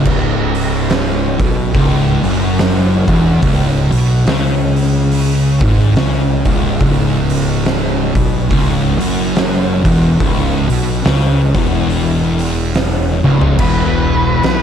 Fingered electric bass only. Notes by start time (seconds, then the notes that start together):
0.06 C#1
1.40 B1
1.74 C#1
2.23 F#1
3.08 E1
3.43 C#1
3.92 B1
4.27 C#2
5.61 G#1
5.96 C#2
6.46 C#1
6.81 C#1
8.15 B1
8.51 C#1
9.00 F#1
9.85 E1
10.21 C#1
10.70 B1
11.05 C#2
11.55 E1
13.24 C#1
13.59 E1
14.44 B1